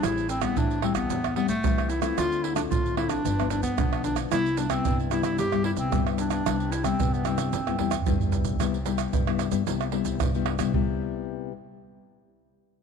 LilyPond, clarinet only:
\new Staff \with { instrumentName = "Clarinet" } { \time 4/4 \key c \major \tempo 4 = 112 e'8 c'16 b16 d'8 c'16 b8. b16 a8. e'16 e'16 | f'8 e'16 d'16 f'8 e'16 d'8. d'16 b8. d'16 r16 | e'8 d'16 c'8 r16 e'16 e'16 g'8 e'16 c'8 r16 d'16 d'16~ | d'8 e'16 c'8 b16 c'2 r8 |
r1 | r1 | }